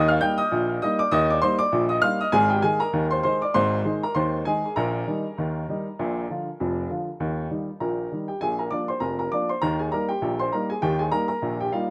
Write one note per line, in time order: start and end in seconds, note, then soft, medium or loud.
0.00 0.17 D#2 loud
0.00 0.17 D#3 medium
0.08 0.22 F5 medium
0.08 0.22 F6 loud
0.21 0.38 G3 medium
0.21 0.38 A#3 medium
0.21 0.38 D#4 medium
0.21 0.38 G5 medium
0.21 0.38 G6 loud
0.38 0.79 D#5 medium
0.38 0.79 D#6 loud
0.52 0.77 A#1 medium
0.52 0.77 A#2 medium
0.82 0.99 G3 medium
0.82 1.00 A#3 medium
0.82 1.00 D#4 medium
0.82 0.99 D#5 medium
0.82 0.99 D#6 loud
0.99 1.12 D5 medium
0.99 1.12 D6 loud
1.11 1.38 D#2 loud
1.11 1.38 D#3 medium
1.11 1.28 D#5 loud
1.11 1.29 D#6 loud
1.30 1.43 D5 medium
1.30 1.43 D6 loud
1.42 1.59 G3 medium
1.42 1.59 A#3 medium
1.42 1.60 D#4 medium
1.42 1.59 C5 medium
1.42 1.59 C6 loud
1.59 1.88 D5 medium
1.59 1.83 D6 loud
1.72 1.98 A#1 medium
1.72 1.98 A#2 medium
1.89 2.02 D#5 medium
1.89 2.02 D#6 medium
2.02 2.19 G3 medium
2.02 2.19 A#3 medium
2.02 2.20 D#4 medium
2.02 2.19 F5 medium
2.02 2.19 F6 loud
2.21 2.33 D#5 medium
2.21 2.33 D#6 loud
2.32 2.59 G#1 medium
2.32 2.59 G#2 loud
2.32 2.49 G#4 medium
2.32 2.50 G#5 loud
2.50 2.63 G4 medium
2.50 2.63 G5 medium
2.62 2.80 D#3 medium
2.62 2.80 G#3 medium
2.62 2.81 D#4 medium
2.62 2.80 G#4 medium
2.62 2.80 G#5 loud
2.80 3.09 A#4 medium
2.80 3.04 A#5 loud
2.93 3.19 D#2 medium
2.93 3.19 D#3 medium
3.11 3.23 C5 medium
3.11 3.22 C6 medium
3.23 3.41 D#3 medium
3.23 3.41 G#3 medium
3.23 3.41 D#4 medium
3.23 3.40 C5 medium
3.23 3.41 C6 medium
3.42 3.54 D5 medium
3.42 3.55 D6 medium
3.54 3.80 G#1 medium
3.54 3.80 G#2 loud
3.54 3.99 C5 medium
3.54 3.92 C6 loud
3.85 4.02 D#3 medium
3.85 4.02 G#3 medium
3.85 4.02 D#4 medium
4.03 4.15 A#4 medium
4.03 4.16 A#5 medium
4.15 4.41 D#2 medium
4.15 4.41 D#3 medium
4.15 4.44 C5 medium
4.15 4.44 C6 medium
4.45 4.63 D#3 medium
4.45 4.63 G#3 medium
4.45 4.64 D#4 medium
4.45 4.75 G#4 medium
4.45 4.70 G#5 medium
4.76 5.02 A#1 medium
4.76 5.03 A#2 loud
4.76 6.86 A#4 medium
4.76 6.47 A#5 loud
5.07 5.24 D#3 medium
5.07 5.24 G3 medium
5.07 5.24 D#4 medium
5.38 5.64 D#2 medium
5.38 5.64 D#3 medium
5.69 5.85 D#3 medium
5.69 5.86 G3 soft
5.69 5.86 D#4 soft
5.99 6.25 A#1 medium
5.99 6.25 A#2 medium
6.30 6.47 D3 soft
6.30 6.47 F3 soft
6.30 6.47 F4 medium
6.60 6.86 F1 medium
6.60 6.86 F2 medium
6.90 7.07 D3 soft
6.90 7.07 F3 soft
6.90 7.07 F4 soft
7.20 7.46 D#2 medium
7.20 7.46 D#3 medium
7.51 7.67 D#3 soft
7.51 7.68 G3 soft
7.51 7.68 D#4 soft
7.80 8.07 A#1 medium
7.80 8.07 A#2 medium
7.80 8.25 A#4 medium
7.80 8.19 A#5 medium
8.12 8.28 D#3 soft
8.12 8.28 G3 soft
8.12 8.29 D#4 soft
8.28 8.41 G4 soft
8.28 8.41 G5 medium
8.41 8.67 A#1 medium
8.41 8.67 A#2 medium
8.41 8.58 G#4 medium
8.41 8.58 G#5 medium
8.59 8.72 A#4 soft
8.59 8.72 A#5 medium
8.71 8.88 F3 soft
8.71 8.89 A#3 soft
8.71 8.89 D4 soft
8.71 8.88 D5 medium
8.71 8.88 D6 medium
8.88 9.02 C5 medium
8.88 9.02 C6 medium
9.00 9.27 F1 medium
9.00 9.27 F2 medium
9.00 9.18 A#4 medium
9.00 9.18 A#5 medium
9.19 9.32 A#4 medium
9.19 9.32 A#5 medium
9.32 9.49 F3 soft
9.32 9.49 A#3 soft
9.32 9.50 D4 soft
9.32 9.49 D5 medium
9.32 9.49 D6 medium
9.49 9.62 C5 medium
9.49 9.62 C6 medium
9.62 9.88 D#2 medium
9.62 9.88 D#3 medium
9.62 9.78 A#4 medium
9.62 9.79 A#5 loud
9.79 9.92 G#4 soft
9.79 9.92 G#5 medium
9.92 10.09 G3 soft
9.92 10.10 A#3 soft
9.92 10.10 D#4 soft
9.92 10.09 A#4 medium
9.92 10.09 A#5 medium
10.09 10.38 G4 medium
10.09 10.38 G5 medium
10.22 10.48 A#1 medium
10.22 10.48 A#2 medium
10.39 10.53 C5 medium
10.39 10.53 C6 medium
10.53 10.70 G3 soft
10.53 10.70 A#3 soft
10.53 10.70 D#4 soft
10.53 10.69 A#4 medium
10.53 10.70 A#5 medium
10.70 10.83 G#4 medium
10.70 10.83 G#5 medium
10.82 11.09 D#2 medium
10.82 11.08 D#3 medium
10.82 10.99 G4 medium
10.82 11.00 G5 loud
10.99 11.12 G#4 medium
10.99 11.13 G#5 medium
11.12 11.29 G3 soft
11.12 11.29 A#3 soft
11.12 11.29 D#4 medium
11.12 11.28 A#4 medium
11.12 11.27 A#5 loud
11.28 11.58 A#4 medium
11.28 11.58 A#5 medium
11.42 11.69 A#1 medium
11.42 11.69 A#2 medium
11.60 11.73 G4 medium
11.60 11.74 G5 medium
11.72 11.90 G3 medium
11.72 11.90 A#3 soft
11.72 11.90 D#4 medium
11.72 11.90 F4 medium
11.72 11.90 F5 medium